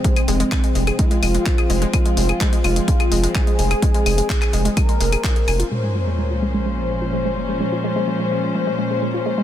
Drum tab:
HH |xxoxxxoxxxoxxxox|xxoxxxoxxxoxxxox|xxoxxxoxxxoxxxox|----------------|
CL |-x--x--x--x--x--|x--x--x--x--x--x|--x--x--x--x--x-|----------------|
CP |----x-------x---|----x-------x---|----xx------x---|----------------|
BD |o---o---o---o---|o---o---o---o---|o---o---o---o---|----------------|

HH |----------------|
CL |----------------|
CP |----------------|
BD |----------------|